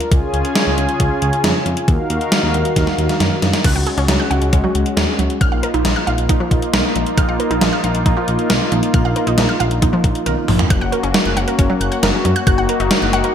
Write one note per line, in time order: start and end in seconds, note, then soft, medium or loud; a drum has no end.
0.00 closed hi-hat medium
0.12 0.21 C#2 loud
0.12 1.86 C#3 medium
0.12 1.86 C#4 medium
0.12 1.86 F4 medium
0.12 1.86 G#4 medium
0.12 1.86 G#5 medium
0.12 kick loud
0.12 closed hi-hat medium
0.34 0.43 C#2 loud
0.34 closed hi-hat medium
0.45 closed hi-hat medium
0.55 snare loud
0.55 closed hi-hat medium
0.67 0.76 C#2 loud
0.78 0.87 C#2 medium
0.78 closed hi-hat medium
0.89 closed hi-hat medium
1.00 1.09 C#2 loud
1.00 kick medium
1.00 closed hi-hat medium
1.22 1.31 C#2 loud
1.22 closed hi-hat medium
1.33 closed hi-hat medium
1.44 1.53 F2 loud
1.44 snare loud
1.44 closed hi-hat medium
1.66 1.75 F2 medium
1.66 closed hi-hat medium
1.77 closed hi-hat medium
1.88 1.97 D#2 loud
1.88 3.63 D#3 medium
1.88 3.63 D#4 medium
1.88 3.63 F#4 medium
1.88 3.63 A#4 medium
1.88 3.63 F5 medium
1.88 kick loud
1.88 closed hi-hat medium
2.10 2.19 D#2 loud
2.10 closed hi-hat medium
2.21 closed hi-hat medium
2.32 snare loud
2.32 closed hi-hat medium
2.43 2.52 D#2 medium
2.54 2.64 D#2 medium
2.54 closed hi-hat medium
2.65 closed hi-hat medium
2.76 2.86 D#2 loud
2.76 kick medium
2.76 snare medium
2.76 closed hi-hat medium
2.87 snare medium
2.98 3.08 D#2 medium
2.98 closed hi-hat medium
3.09 snare medium
3.09 closed hi-hat soft
3.20 3.30 F#2 medium
3.20 snare medium
3.20 closed hi-hat medium
3.42 3.52 F#2 medium
3.42 snare medium
3.42 closed hi-hat medium
3.53 snare medium
3.53 closed hi-hat medium
3.64 3.74 C#2 loud
3.64 5.39 G#3 medium
3.64 5.39 C#4 medium
3.64 5.39 F#4 medium
3.64 3.74 F#6 medium
3.64 kick loud
3.64 closed hi-hat medium
3.64 crash medium
3.76 3.85 C#2 loud
3.76 3.86 F#5 medium
3.87 3.97 G#4 medium
3.87 closed hi-hat medium
3.98 4.07 C#2 loud
3.98 4.08 C#4 medium
3.98 closed hi-hat medium
4.08 4.18 C#2 loud
4.08 4.19 F#3 medium
4.08 snare loud
4.08 closed hi-hat medium
4.20 4.30 F#6 medium
4.31 4.40 C#2 medium
4.31 4.41 F#5 medium
4.31 closed hi-hat medium
4.42 4.51 C#2 loud
4.42 closed hi-hat medium
4.53 4.62 C#2 loud
4.53 4.63 C#4 medium
4.53 kick medium
4.53 closed hi-hat medium
4.64 4.74 F#3 medium
4.75 4.84 C#2 medium
4.75 closed hi-hat medium
4.86 closed hi-hat soft
4.97 5.06 D#2 loud
4.97 5.07 G#4 medium
4.97 snare loud
4.97 closed hi-hat medium
5.19 5.28 C#2 medium
5.19 5.29 F#3 medium
5.19 closed hi-hat medium
5.30 closed hi-hat medium
5.41 5.50 A#1 loud
5.41 10.66 A#3 medium
5.41 10.66 D#4 medium
5.41 10.66 F4 medium
5.41 5.51 F6 loud
5.41 kick loud
5.41 closed hi-hat medium
5.52 5.61 A#1 loud
5.52 5.62 F5 medium
5.63 5.73 A#4 medium
5.63 closed hi-hat medium
5.74 5.84 A#1 loud
5.74 5.84 D#4 medium
5.74 closed hi-hat medium
5.85 5.95 A#1 loud
5.85 5.95 F3 medium
5.85 snare loud
5.85 closed hi-hat medium
5.96 6.06 F6 medium
6.07 6.17 A#1 loud
6.07 6.17 F5 loud
6.07 closed hi-hat medium
6.18 6.28 A#1 loud
6.18 closed hi-hat medium
6.29 6.39 A#1 loud
6.29 6.39 D#4 medium
6.29 kick medium
6.29 closed hi-hat medium
6.40 6.50 F3 medium
6.51 6.61 A#1 loud
6.51 kick medium
6.51 closed hi-hat medium
6.62 closed hi-hat medium
6.73 6.83 B1 medium
6.73 6.83 A#4 medium
6.73 snare loud
6.73 closed hi-hat medium
6.95 7.05 A#1 medium
6.95 7.05 F3 medium
6.95 closed hi-hat medium
7.07 closed hi-hat medium
7.18 7.27 A#1 loud
7.18 7.28 F6 loud
7.18 kick loud
7.18 closed hi-hat medium
7.29 7.38 A#1 loud
7.29 7.39 F5 medium
7.40 7.50 A#4 medium
7.40 closed hi-hat medium
7.51 7.60 A#1 loud
7.51 7.61 D#4 medium
7.51 closed hi-hat medium
7.61 7.71 A#1 loud
7.61 7.72 F3 medium
7.61 snare loud
7.61 closed hi-hat medium
7.73 7.83 F6 medium
7.84 7.93 A#1 loud
7.84 7.94 F5 loud
7.84 closed hi-hat medium
7.95 8.04 A#1 loud
7.95 closed hi-hat medium
8.06 8.15 A#1 loud
8.06 8.16 D#4 medium
8.06 kick loud
8.06 closed hi-hat medium
8.17 8.27 F3 medium
8.28 8.37 A#1 medium
8.28 closed hi-hat medium
8.39 closed hi-hat medium
8.50 8.59 B1 medium
8.50 8.60 A#4 medium
8.50 snare loud
8.50 closed hi-hat medium
8.72 8.81 A#1 medium
8.72 8.82 F3 medium
8.72 closed hi-hat medium
8.83 closed hi-hat medium
8.94 9.03 A#1 loud
8.94 9.04 F6 loud
8.94 kick loud
8.94 closed hi-hat medium
9.05 9.14 A#1 loud
9.05 9.15 F5 medium
9.16 9.26 A#4 medium
9.16 closed hi-hat medium
9.27 9.36 A#1 medium
9.27 9.37 D#4 loud
9.27 closed hi-hat medium
9.38 9.47 A#1 loud
9.38 9.48 F3 medium
9.38 snare loud
9.38 closed hi-hat medium
9.49 9.59 F6 medium
9.60 9.69 A#1 loud
9.60 9.70 F5 medium
9.60 closed hi-hat medium
9.71 9.80 A#1 loud
9.71 closed hi-hat medium
9.82 9.92 A#1 loud
9.82 9.92 D#4 medium
9.82 kick loud
9.82 closed hi-hat medium
9.93 10.03 F3 medium
10.04 10.13 A#1 loud
10.04 kick medium
10.04 closed hi-hat medium
10.15 closed hi-hat medium
10.26 10.36 B1 medium
10.26 10.36 A#4 medium
10.26 closed hi-hat medium
10.26 high tom medium
10.48 10.58 A#1 medium
10.48 10.58 F3 medium
10.48 mid tom medium
10.48 open hi-hat medium
10.59 closed hi-hat medium
10.59 floor tom medium
10.70 10.80 F#1 loud
10.70 12.45 A#3 medium
10.70 12.45 C#4 medium
10.70 13.35 F#4 medium
10.70 10.80 F#6 loud
10.70 kick loud
10.70 closed hi-hat medium
10.81 10.91 F#1 loud
10.81 10.91 F#5 medium
10.92 11.02 A#4 medium
10.92 closed hi-hat medium
11.03 11.13 F#1 loud
11.03 11.13 C#4 medium
11.03 closed hi-hat medium
11.14 11.24 F#3 medium
11.14 snare loud
11.14 closed hi-hat medium
11.25 11.35 F#1 loud
11.25 11.36 F#6 medium
11.37 11.46 F#1 loud
11.37 11.47 F#5 loud
11.37 closed hi-hat medium
11.48 11.58 A#4 medium
11.48 closed hi-hat medium
11.58 11.68 F#1 loud
11.58 11.69 C#4 medium
11.58 kick loud
11.58 closed hi-hat medium
11.70 11.80 F#3 medium
11.81 11.90 F#1 loud
11.81 11.91 F#6 medium
11.81 closed hi-hat medium
11.92 12.02 F#5 medium
11.92 closed hi-hat medium
12.03 12.12 F#1 loud
12.03 12.13 A#4 medium
12.03 snare loud
12.03 closed hi-hat medium
12.14 12.24 C#4 medium
12.25 12.34 F#2 loud
12.25 12.35 F#3 medium
12.25 closed hi-hat medium
12.36 12.46 F#6 loud
12.36 closed hi-hat medium
12.47 12.56 F#1 loud
12.47 13.35 A#3 medium
12.47 13.35 D#4 medium
12.47 12.57 F#6 loud
12.47 kick loud
12.47 closed hi-hat medium
12.58 12.67 F#1 loud
12.58 12.68 F#5 medium
12.69 12.79 A#4 medium
12.69 closed hi-hat medium
12.80 12.89 F#1 loud
12.80 12.90 D#4 medium
12.80 closed hi-hat medium
12.91 13.01 F#3 medium
12.91 snare loud
12.91 closed hi-hat medium
13.02 13.11 F#1 loud
13.02 13.12 F#6 medium
13.13 13.22 F#1 medium
13.13 13.23 F#5 loud
13.13 closed hi-hat medium
13.24 13.34 A#4 medium
13.24 closed hi-hat medium